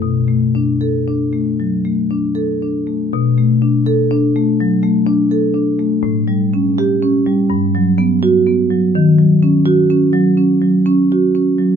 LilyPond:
<<
  \new Staff \with { instrumentName = "Marimba" } { \time 4/4 \key b \minor \tempo 4 = 83 r4 a'8 r2 r8 | r4 a'8 r2 r8 | r4 g'8 r4. fis'8 r8 | r4 fis'8 r2 r8 | }
  \new Staff \with { instrumentName = "Marimba" } { \time 4/4 \key b \minor \tuplet 3/2 { b,8 a8 d'8~ d'8 d'8 a8 fis8 a8 d'8 a'8 d'8 a8 } | \tuplet 3/2 { b,8 a8 d'8~ d'8 d'8 a8 fis8 a8 d'8 a'8 d'8 a8 } | \tuplet 3/2 { a,8 g8 cis'8~ cis'8 cis'8 g8 g,8 fis8 b8~ b8 b8 fis8 } | \tuplet 3/2 { dis8 fis8 cis'8~ cis'8 cis'8 fis8 cis'8 fis8 cis'8 fis'8 cis'8 fis8 } | }
>>